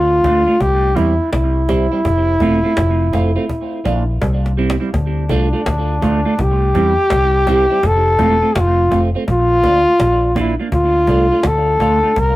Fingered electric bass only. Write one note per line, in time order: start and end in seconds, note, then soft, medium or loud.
0.00 0.22 D2 loud
0.25 0.46 D2 medium
0.61 0.95 C2 loud
0.98 1.18 E2 medium
1.33 1.88 C2 medium
2.05 2.39 F1 medium
2.41 2.62 E1 medium
2.78 3.11 F1 loud
3.14 3.35 F1 medium
3.86 4.19 A#1 loud
4.22 4.77 C2 medium
4.94 5.28 D2 medium
5.30 5.52 C2 medium
5.67 6.01 D2 loud
6.03 6.24 D2 loud
6.39 6.73 C2 loud
6.75 6.96 E2 medium
7.12 7.66 C2 medium
7.84 8.17 F1 loud
8.19 8.41 E1 loud
8.56 8.89 F1 loud
8.92 9.13 F1 medium
9.28 9.61 A#1 loud
9.64 9.85 D2 medium
10.01 10.55 A#1 medium
10.72 11.06 D2 loud
11.08 11.29 C2 loud
11.45 11.78 D2 loud
11.81 12.02 D2 medium
12.17 12.36 C2 loud